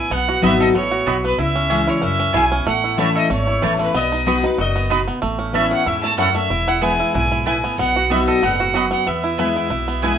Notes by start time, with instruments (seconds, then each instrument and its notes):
Already playing: five-string banjo E4, resonator guitar played with a steel bar G#5, fiddle G#5
0.10 upright bass B1, steel-string acoustic guitar B2, five-string banjo B3, fiddle F#5, resonator guitar played with a steel bar F#5
0.29 five-string banjo F#4
0.41 upright bass G#1, steel-string acoustic guitar F#3 B3 D#4 F#4, mandolin B3 F#4 D#5 B5, five-string banjo B3, fiddle E5, resonator guitar played with a steel bar E5
0.60 five-string banjo A4, resonator guitar played with a steel bar D#5, fiddle D#5
0.75 upright bass A1, steel-string acoustic guitar A2, five-string banjo B3, resonator guitar played with a steel bar C#5, fiddle C#5
0.91 five-string banjo F#4
1.06 upright bass B1, steel-string acoustic guitar B2, five-string banjo F#3, mandolin B3 F#4 D#5 B5
1.24 five-string banjo B3, resonator guitar played with a steel bar B4, fiddle B4
1.38 upright bass C#2, steel-string acoustic guitar C#3, five-string banjo E4, resonator guitar played with a steel bar E5, fiddle E5
1.56 five-string banjo C#4
1.70 steel-string acoustic guitar E3 G#3 C#4 E4, mandolin C#4 G#4 E5 G#5, five-string banjo C#4
1.87 five-string banjo E4, resonator guitar played with a steel bar C#5, fiddle C#5
2.02 upright bass C#2, steel-string acoustic guitar F#2, five-string banjo C#4, resonator guitar played with a steel bar E5, fiddle E5
2.20 five-string banjo C#4
2.33 upright bass B1, steel-string acoustic guitar B2, mandolin C#4 G#4 E5 G#5, five-string banjo E4, resonator guitar played with a steel bar G#5
2.37 fiddle G#5
2.52 five-string banjo C#4
2.66 upright bass A1, steel-string acoustic guitar A2, five-string banjo A3, fiddle F#5, resonator guitar played with a steel bar F#5
2.84 five-string banjo E4
2.97 steel-string acoustic guitar E3 A3 C#4 E4, mandolin A3 E4 C#5 A5, five-string banjo A3, fiddle E5, resonator guitar played with a steel bar E5
3.16 five-string banjo A4, resonator guitar played with a steel bar D#5, fiddle D#5
3.30 upright bass G#1, steel-string acoustic guitar E2, five-string banjo A3, resonator guitar played with a steel bar C#5, fiddle C#5
3.47 five-string banjo E4
3.62 upright bass A1, steel-string acoustic guitar E3 A3 C#4 E4, five-string banjo E3, mandolin A3 E4 C#5 A5
3.79 five-string banjo A3, resonator guitar played with a steel bar B4, fiddle B4
3.94 upright bass B1, steel-string acoustic guitar B2, five-string banjo B3, resonator guitar played with a steel bar D#5, fiddle D#5
4.12 five-string banjo D#4
4.26 steel-string acoustic guitar F#3 B3 D#4 F#4, mandolin B3 F#4 D#5 B5, five-string banjo B3
4.43 five-string banjo D#4, steel-string acoustic guitar D#4 F#4, fiddle B4, resonator guitar played with a steel bar B4
4.58 upright bass F#1, steel-string acoustic guitar F#2, five-string banjo F#4, fiddle D#5, resonator guitar played with a steel bar D#5
4.76 five-string banjo B3
4.90 steel-string acoustic guitar B2, mandolin B3 F#4 D#5 B5, five-string banjo D#4
5.08 five-string banjo B3
5.22 upright bass A1, steel-string acoustic guitar A2, five-string banjo A3
5.39 five-string banjo C#4
5.53 steel-string acoustic guitar E3 B3 C#4 E4, five-string banjo A3, mandolin C#4 A4 E5 B5, fiddle E5, resonator guitar played with a steel bar E5
5.71 five-string banjo C#4, resonator guitar played with a steel bar F#5, fiddle F#5
5.86 upright bass E2, steel-string acoustic guitar G#2, five-string banjo E4, resonator guitar played with a steel bar E5, fiddle E5
6.03 five-string banjo A3, fiddle A5, resonator guitar played with a steel bar A5
6.17 steel-string acoustic guitar F#2, mandolin C#4 A4 E5 B5, five-string banjo C#4, resonator guitar played with a steel bar F#5, fiddle F#5
6.35 five-string banjo A3, resonator guitar played with a steel bar E5, fiddle E5
6.50 upright bass E1, steel-string acoustic guitar E2, five-string banjo E4
6.67 five-string banjo E4, resonator guitar played with a steel bar F#5, fiddle F#5
6.81 steel-string acoustic guitar E3 G#3 B3 E4, mandolin B3 E4 B4 G#5, five-string banjo B3, resonator guitar played with a steel bar G#5, fiddle G#5
7.00 five-string banjo E4
7.14 upright bass B1, steel-string acoustic guitar G#2, five-string banjo E4, resonator guitar played with a steel bar G#5, fiddle G#5
7.32 five-string banjo E4
7.46 steel-string acoustic guitar A2, mandolin B3 E4 B4 G#5, five-string banjo E4, fiddle G#5, resonator guitar played with a steel bar G#5
7.64 five-string banjo B3
7.78 upright bass B1, steel-string acoustic guitar B2, five-string banjo B3, fiddle F#5, resonator guitar played with a steel bar F#5
7.96 five-string banjo F#4
8.10 steel-string acoustic guitar F#3 B3 D#4 F#4, mandolin B3 F#4 D#5 B5, five-string banjo B3, fiddle E5, resonator guitar played with a steel bar E5
8.27 five-string banjo A4, resonator guitar played with a steel bar D#5, fiddle D#5
8.42 upright bass F#1, steel-string acoustic guitar G#2, five-string banjo B3, resonator guitar played with a steel bar F#5, fiddle F#5
8.60 five-string banjo F#4
8.74 steel-string acoustic guitar F#2, five-string banjo F#3, mandolin B3 F#4 D#5 B5
8.91 five-string banjo B3, resonator guitar played with a steel bar F#5, fiddle F#5
9.07 upright bass E2, steel-string acoustic guitar E2, five-string banjo B3, resonator guitar played with a steel bar E5, fiddle E5
9.24 five-string banjo E4
9.38 steel-string acoustic guitar E3 G#3 B3 E4, mandolin B3 E4 B4 G#5, five-string banjo B3
9.56 five-string banjo E4
9.70 upright bass B1, steel-string acoustic guitar B2, five-string banjo E4
9.88 five-string banjo B3
10.02 steel-string acoustic guitar E3 G#3 B3 E4, mandolin B3 E4 B4 G#5, five-string banjo E4, fiddle G#5, resonator guitar played with a steel bar G#5